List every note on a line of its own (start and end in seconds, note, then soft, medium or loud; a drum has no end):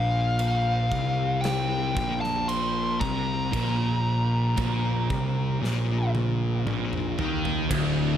0.00 0.88 A#1 loud
0.00 0.90 A#2 medium
0.00 1.49 F5 medium
0.39 crash medium
0.92 1.93 C2 medium
0.92 1.95 C3 medium
0.92 kick loud
1.41 2.17 G5 medium
1.41 crash medium
1.45 snare loud
1.95 2.97 A#1 loud
1.95 2.99 A#2 loud
1.95 kick loud
2.21 2.49 A5 loud
2.21 snare soft
2.48 3.00 C6 loud
2.48 crash medium
3.00 3.50 C2 medium
3.00 3.52 C3 medium
3.00 6.10 A#5 medium
3.00 kick medium
3.52 4.54 A#1 medium
3.52 4.56 A#2 loud
3.52 kick loud
3.52 crash medium
4.57 5.07 A#1 medium
4.57 5.08 A#2 medium
4.57 kick loud
4.57 crash medium
5.10 5.59 C2 medium
5.10 5.60 C3 medium
5.10 kick loud
5.60 6.61 A#1 medium
5.60 6.65 A#2 loud
5.64 snare medium
6.15 high tom medium
6.66 7.14 A#1 medium
6.66 7.17 A#2 loud
6.66 mid tom medium
6.93 mid tom medium
7.18 7.67 D#2 medium
7.18 7.69 D#3 loud
7.18 floor tom loud
7.45 floor tom medium
7.70 8.17 D1 loud
7.70 8.17 D2 loud
7.70 kick loud
7.70 ride loud